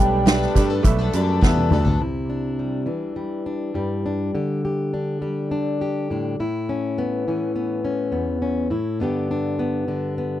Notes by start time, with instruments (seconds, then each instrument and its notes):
Already playing: upright piano G1 G2 A3 G4 B4, picked electric bass B1, twelve-string acoustic guitar G3 B3 D4 A4, french horn G3, clean electric guitar G5
0.00 upright piano D5
0.24 twelve-string acoustic guitar G3 B3 D4 A4, upright piano A3 G4 B4 E5, snare, closed hi-hat
0.42 snare
0.54 picked electric bass G2, twelve-string acoustic guitar G3 B3 D4, upright piano A3 G4 B4 D5, kick, snare, closed hi-hat
0.58 twelve-string acoustic guitar A4
0.70 twelve-string acoustic guitar B3 D4 A4
0.83 picked electric bass B1, upright piano A3 G4 B4 E5, kick, closed hi-hat
0.99 twelve-string acoustic guitar B3 D4 A4
1.12 picked electric bass F#2, twelve-string acoustic guitar G3 B3 D4 A4, upright piano A3 G4 B4 D5, closed hi-hat
1.41 picked electric bass E2, twelve-string acoustic guitar G3 B3 D4 A4, upright piano A3 G4 B4 E5, kick, snare
1.57 high tom
1.70 picked electric bass D2, twelve-string acoustic guitar G3 B3 D4 A4, upright piano A3 G4 B4 D5, mid tom
1.85 twelve-string acoustic guitar B3 D4 A4, floor tom
2.00 steel-string acoustic guitar C3 E4
2.30 steel-string acoustic guitar D4
2.59 steel-string acoustic guitar G3
2.86 steel-string acoustic guitar E3 D4
3.16 steel-string acoustic guitar G3
3.46 steel-string acoustic guitar D4
3.74 steel-string acoustic guitar G2 G3
4.06 steel-string acoustic guitar D4
4.35 steel-string acoustic guitar D3 G4
4.65 steel-string acoustic guitar G4
4.94 steel-string acoustic guitar D4
5.22 steel-string acoustic guitar G3 G4
5.51 steel-string acoustic guitar D4
5.81 steel-string acoustic guitar G4
6.10 steel-string acoustic guitar A2 D4
6.40 steel-string acoustic guitar A2 E4
6.69 steel-string acoustic guitar C#4
6.98 steel-string acoustic guitar B3
7.28 steel-string acoustic guitar E3 C#4
7.56 steel-string acoustic guitar B3
7.85 steel-string acoustic guitar C#4
8.12 steel-string acoustic guitar E2 B3
8.42 steel-string acoustic guitar C#4
8.70 steel-string acoustic guitar A2 E4
8.99 steel-string acoustic guitar G2 D3 B3 D4 G4
9.31 steel-string acoustic guitar D4
9.59 steel-string acoustic guitar B3
9.88 steel-string acoustic guitar D3 D4
10.18 steel-string acoustic guitar B3